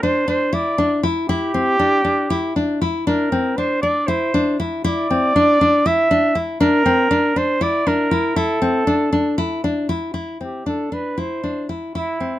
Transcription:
0.03 D4 C5
0.28 D4 C5
0.53 E4 D5
0.78 D4
1.03 E4
1.29 E4 G4
1.54 C4
1.79 D4
2.05 D4
2.30 E4
2.56 D4
2.82 E4
3.07 D4 A#4
3.32 C4
3.57 D4 C5
3.82 D4 D5
4.07 E4 C5
4.34 D4
4.60 E4
4.84 E4 D5
5.10 C4
5.36 D4
5.61 D4
5.86 E4 E5
6.11 D4
6.35 E4
6.60 D4 A#4
6.86 C4
7.11 D4
7.36 D4 C5
7.61 E4 D5
7.87 D4 A#4
8.11 E4
8.36 E4 A4
8.62 C4
8.87 D4
9.13 D4
9.38 E4
9.64 D4
9.89 E4
10.14 E4
10.41 C4 G4
10.66 D4 A4
10.92 D4 B4
11.18 E4 C5
11.44 D4
11.69 E4
11.95 E4
12.20 C4

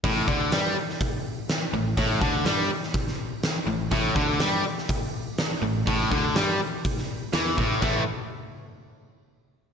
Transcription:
0.04 A1 A2, kick, open hi-hat
0.28 D2 D3, kick
0.52 G2 G3, snare, open hi-hat
0.89 snare
1.01 kick, open hi-hat
1.49 snare, open hi-hat
1.73 A1 A2
1.97 A1 A2, kick, open hi-hat
2.21 D2 D3, kick
2.45 G2 G3, snare, open hi-hat
2.83 snare
2.94 kick, open hi-hat
3.08 snare
3.43 snare, open hi-hat
3.67 A1 A2
3.92 A1 A2, kick, open hi-hat
4.16 D2 D3, kick
4.39 G2 G3, snare, open hi-hat
4.78 snare
4.89 kick, open hi-hat
5.38 snare, open hi-hat
5.62 A1 A2
5.87 A1 A2, kick, open hi-hat
6.11 D2 D3, kick
6.35 G2 G3, snare, open hi-hat
6.85 kick, open hi-hat
6.98 snare
7.33 E2 E3, snare, open hi-hat
7.58 A1 A2, kick
7.82 A1 A2 E3 A3, kick, crash

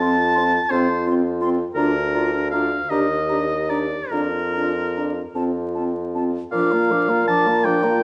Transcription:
Already playing: F2 A5
0.00 C4 F4 C6
0.35 C4 F4 C6
0.70 F2 C4 F4 C5 C6
1.05 C4 F4 C6
1.40 C4 F4 C6
1.74 D2 D4 F4 A#4 A#5
2.14 D4 F4 A#5
2.51 D4 F4 F5 A#5
2.89 D#2 D4 G4 D#5 A#5
3.29 D4 G4 A#5
3.69 D4 G4 D5 A#5
4.10 F2 D4 F4 A#4 A#5
4.53 F4 A#5
4.57 D4
4.96 D4 F4 A#5
5.35 F2 C4 F4 A5
5.74 C4 F4 A5
6.15 C4 F4 A5
6.52 A#2 F3 D4 F5 D6
6.72 A#3 F4 A#5
6.91 F3 D4 D6
7.09 A#3 F4 A#5
7.28 F3 D4 A5 D6
7.47 A#3 F4 A#5
7.65 F3 D4 G5 D6
7.83 A#3 F4 A#5

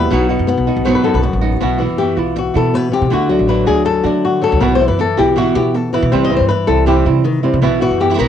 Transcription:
Already playing: G3 A3 B3 E4 G4 B4
0.11 B1 B2 F#3 B3 D#4 F#4
0.29 B3 D#4 F#4
0.39 F#2
0.47 B3, muted nylon-string guitar stroke
0.57 B1
0.67 B3 D#4 F#4
0.77 B1
0.85 B2 F#3 B3 D#4 F#4 C5
0.95 B4
1.04 F#2 B3 D#4 F#4 A4
1.14 B1 B4
1.23 F#4, muted nylon-string guitar stroke
1.33 A1
1.41 B3 D#4 F#4
1.61 B1 B2 E3 B3 E4 F#4
1.78 E3 B3 E4 F#4
1.89 F#2
1.98 E3 B3 E4 F#4 G4
2.17 B1 B3 E4 F4 F#4
2.36 F#4, muted nylon-string guitar stroke
2.54 B2 B3 E4 F#4 A4
2.74 B2 B4
2.92 C3 G4
3.02 B2
3.10 D2 D3 A3 D4 F#4
3.29 F#3 A3 D4 F#4
3.39 A1
3.48 D3 A3 D4 F#4 B4
3.66 D2 A3 D4 F#4 G#4
3.85 A4, muted nylon-string guitar stroke
4.03 D3 A3 D4 F#4
4.25 F#4
4.42 F#3 A4
4.52 C#2
4.60 B1 B2 E3 B3 E4 F#4 B4
4.75 C5
4.79 E3 B3 E4 F#4
4.88 F#2 B4
4.99 A4, muted nylon-string guitar stroke
5.17 B1 B3 E4 F#4 G4
5.36 B2 E3 B3 E4 F#4
5.55 B2 B3 E4 F#4 G4
5.74 A4, muted nylon-string guitar stroke
5.93 E3 B3 E4 F#4 B4
6.03 B2
6.12 C2 C3 E3 G3 C4 E4 C5
6.25 D#5
6.30 E3 G3 C4 E4
6.37 G2 C5
6.49 B4, muted nylon-string guitar stroke
6.67 C2 G3 C4 E4 A4
6.86 C3 E3 G3 C4 E4 G4
7.06 C3 G3 C4 E4
7.24 D#3, muted nylon-string guitar stroke
7.43 C3 G3 C4 E4
7.53 C3
7.62 B1 B2 E3 B3 E4 F#4
7.81 E3 B3 E4 F#4
7.91 F#2
8.00 B3 E4 F#4 G4
8.10 E3 B3 E4 F#4
8.14 E3 B3 E4 F#4
8.19 B1 B2 E3 B3 E4 F#4 A#4

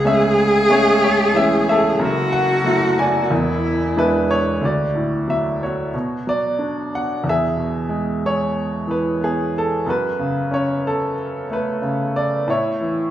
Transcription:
Already playing: C#2 G#4
0.05 G#3 A3 C#4 E5
0.69 G#3 A3 C#4 G#4 C#5
1.04 C#5
1.34 E3 A3 C#4 E5
1.69 A4 E5
1.99 F#1 F#2 F#4
2.33 F#5
2.65 F#3 A3 E4
2.99 D5 G#5
3.23 F#4
3.30 E1 E2 E4
3.96 G#3 D4 E4 B4
4.31 C#5
4.61 D2
4.65 F#4 D5
4.95 A2
5.28 F#3 E5
5.63 F#4 C#5
5.94 B2
6.27 F#3 D5
6.59 D4
6.95 F#5
7.24 E2
7.29 G#4 E5
7.57 B2
7.89 G#3
8.26 C#5
8.87 E3 B4
9.21 B3 G#4
9.58 A4
9.86 F#2 F#4 B4
10.19 C#3
10.51 C#4 C#5
10.87 A4
11.50 A3 B4
11.82 C#3
12.16 D5
12.48 A2 E4 C#5
12.81 E3

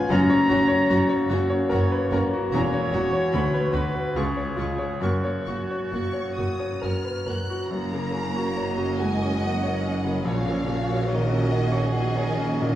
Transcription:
Already playing: C#4 F4 B4 C#5 G#5
0.09 F#1 F#2 A#3 C#4 F#4 A#5
0.30 C#5
0.49 F#1 F#2 C#4 F#4 A#5
0.68 C#5
0.90 F#1 F#2 C#4 F#4 A#5
1.09 C#5
1.30 F#1 F#2 C#4 F#4 A#5
1.50 C#5
1.69 F#1 F#2 C#4 F#4 A#4 C#5 A#5
1.92 B4
2.11 F#1 F#2 C#4 F#4 A#4 A#5
2.33 F#4
2.52 E1 E2 C#4 F#4 C#5 A#5
2.74 C#5
2.92 E1 E2 C#4 F#4 A#5
3.13 C#5
3.31 D2 B3 F#4 B5
3.54 B4
3.72 D2 B3 F#4 B4 B5
3.95 B4
4.15 C#2 G#3 F4 G#4 C#6
4.37 C#5
4.56 C#2 G#3 F4
4.60 C#6
4.78 C#5
5.00 F#1 F#2 A#3 F#4 A#4 C#6
5.24 C#5
5.46 F#1 F#2 A#3 F#4 C#6
5.71 C#5
5.92 F#1 F#2 A#3 F#4 C#6
6.13 C#5
6.36 F#1 F#2 A#3 F#4 D#6
6.59 C#5
6.82 F#1 F#2 A#3 F#4 A#4 F6
7.04 B4
7.26 F#1 F#2 A#3 F#4 A#4 F#6
7.50 F#4
7.69 F#1 F#2 A#3 F#4 A#5
7.92 C#3 C#4 A#4
8.13 A#3 C#4 F#4
8.34 C#4 F#4 A#4
8.56 A#3 F#4 C#5 D#5
8.77 C#4 F#4 A#4
8.98 G#3 A#3 F#4 F#5 G#5
9.22 C#4 A#4 C#6
9.41 F#3 F#5
9.45 A#3 F#4
9.63 C#4 A#4 C#5
9.84 A#3 C#4 F#4
10.04 C#3 C#4 A#4
10.25 A#1 F3 A#3 F#4 C#5 F5
10.46 A#2 C#4 A#4
10.67 A#3 C#4 F#4 C#5
10.88 C#4 F#4 A#4
11.08 D#3 A#3 F#4 A#4 C#5 D#5
11.29 C#4 F#4 A#4
11.50 A#3 F#4 G#4 F#5
11.72 C#4 A#4 C#6
11.92 D#3 A#3 F#4 D#5 F#5
12.15 C#4 A#4 C#5
12.37 A#3 C#4 F#4
12.60 A#2 C#4 A#4

